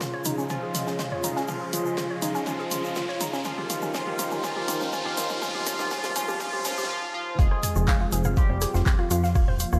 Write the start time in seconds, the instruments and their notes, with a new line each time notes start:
Already playing: analog synth pad C#3 C#4 F4 G#4, analog polysynth F3 F4, ambient pad C#4 G#4 D#5 G#5, riser
0.01 synth pluck F4, kick, snare, closed hi-hat, mid tom, shaker
0.14 synth pluck C#5
0.25 synth pluck D#4, closed hi-hat, open hi-hat, mid tom, shaker
0.38 synth pluck C#4, shaker
0.49 analog polysynth F3 F4, synth pluck C#4, kick, closed hi-hat, mid tom, shaker
0.63 synth pluck G#4
0.74 synth pluck F4, snare, closed hi-hat, open hi-hat, mid tom, shaker
0.87 synth pluck C#4, snare, shaker
0.99 synth pluck F4, kick, snare, closed hi-hat, mid tom, shaker
1.12 synth pluck C#5, mid tom
1.24 synth pluck D#4, closed hi-hat, open hi-hat, mid tom, shaker
1.36 synth pluck C#4, snare, shaker
1.48 analog polysynth F3 F4, synth pluck C#4, kick, open hi-hat, mid tom, shaker
1.61 synth pluck G#4
1.73 synth pluck F4, closed hi-hat, open hi-hat, mid tom, shaker
1.86 synth pluck C#4, shaker
1.97 synth pluck F4, kick, snare, closed hi-hat, mid tom, shaker
2.10 synth pluck C#5
2.22 synth pluck D#4, closed hi-hat, open hi-hat, mid tom, shaker
2.35 synth pluck C#4, closed hi-hat, shaker
2.46 analog polysynth F3 F4, synth pluck C#4, kick, closed hi-hat, mid tom, shaker
2.60 synth pluck G#4, closed hi-hat
2.71 synth pluck F4, closed hi-hat, open hi-hat, mid tom, shaker
2.84 synth pluck C#4, shaker
2.96 synth pluck F4, kick, snare, closed hi-hat, mid tom, shaker
3.08 synth pluck C#5, snare
3.21 synth pluck D#4, closed hi-hat, open hi-hat, mid tom, shaker
3.33 synth pluck C#4, snare, shaker
3.45 analog synth pad D#3 D#4 G4 A#4, analog polysynth F3 F4, synth pluck C#4, ambient pad D#4, kick, closed hi-hat, mid tom, shaker
3.58 synth pluck G4, ambient pad A#4, mid tom
3.69 synth pluck F4, closed hi-hat, open hi-hat, mid tom, shaker
3.82 synth pluck C#4, mid tom, shaker
3.94 analog polysynth F3 F4, synth pluck C#4, kick, snare, closed hi-hat, mid tom, shaker
4.07 synth pluck G4, mid tom
4.19 synth pluck F4, closed hi-hat, open hi-hat, mid tom, shaker
4.31 synth pluck C#4, mid tom, shaker
4.35 ambient pad F5
4.44 analog polysynth F3 F4, synth pluck C#4, kick, closed hi-hat, mid tom, shaker
4.56 synth pluck G4, mid tom
4.68 synth pluck F4, closed hi-hat, open hi-hat, mid tom, shaker
4.81 synth pluck C#4, mid tom, shaker
4.93 analog polysynth F3 F4, synth pluck C#4, kick, closed hi-hat, mid tom, shaker
5.05 synth pluck G4, mid tom
5.17 synth pluck F4, snare, closed hi-hat, open hi-hat, mid tom, shaker
5.29 synth pluck C#4, mid tom, shaker
5.42 analog polysynth F3 F4, synth pluck C#4, kick, open hi-hat, mid tom, shaker
5.48 mid tom
5.55 synth pluck G4, mid tom
5.61 mid tom
5.65 analog polysynth F3 F4, synth pluck C#4, snare, closed hi-hat, mid tom, open hi-hat, shaker
5.73 mid tom
5.79 synth pluck G4, snare, closed hi-hat, mid tom, shaker
5.85 mid tom
5.91 analog polysynth F3 F4, synth pluck C#4, kick, snare, closed hi-hat, mid tom, shaker
5.97 mid tom
6.04 synth pluck G4, snare, closed hi-hat, open hi-hat, mid tom, shaker
6.10 mid tom
6.16 analog polysynth F3 F4, synth pluck C#4, closed hi-hat, open hi-hat, mid tom, shaker
6.22 mid tom
6.28 synth pluck G4, closed hi-hat, mid tom, shaker
6.34 mid tom
6.40 analog polysynth F3 F4, synth pluck C#4, kick, closed hi-hat, mid tom, swell, shaker
6.47 mid tom
6.53 synth pluck G4, closed hi-hat, mid tom
6.59 mid tom
6.65 analog polysynth F3 F4, synth pluck C#4, snare, closed hi-hat, mid tom, open hi-hat, shaker
6.71 snare, closed hi-hat, mid tom
6.77 synth pluck G4, snare, closed hi-hat, mid tom, shaker
6.83 snare, closed hi-hat, mid tom
6.90 analog polysynth F3 F4
7.14 analog polysynth F3 F4
7.39 analog synth bass F1, analog synth pad F3 C4 F4, analog polysynth G#3 G#4, synth pluck F4 F5, kick, closed hi-hat, shaker
7.51 synth pluck C5 C6, cross-stick
7.63 synth pluck G#5 G#6, closed hi-hat, mid tom, open hi-hat, shaker
7.76 analog synth bass F1, synth pluck F4 F5, shaker
7.87 synth pluck F5 F6, kick, cross-stick, snare, clap, closed hi-hat, shaker
8.01 synth pluck F4 F5
8.12 analog synth bass F1, synth pluck G#4 G#5, closed hi-hat, open hi-hat, shaker
8.24 synth pluck F5 F6, cross-stick, mid tom, shaker
8.37 analog polysynth G3 G4, synth pluck F4 F5, kick, closed hi-hat, shaker
8.50 analog synth bass F1, synth pluck C5 C6
8.61 synth pluck G#4 G#5, cross-stick, snare, closed hi-hat, open hi-hat, shaker
8.74 analog synth bass F1, synth pluck F4 F5, snare, shaker
8.86 synth pluck C4, kick, snare, clap, closed hi-hat, mid tom, shaker
8.99 synth pluck F4 F5, cross-stick
9.10 analog synth bass F2, synth pluck F4 F5, closed hi-hat, open hi-hat, shaker
9.24 synth pluck F5 F6, snare, shaker
9.35 analog synth bass D#1, analog synth pad A#3, synth pluck F4 F5, kick, cross-stick, open hi-hat, shaker
9.48 synth pluck C5 C6, mid tom
9.59 synth pluck F4 F5, closed hi-hat, open hi-hat, shaker
9.73 analog synth bass D#1, synth pluck F4 F5, cross-stick, shaker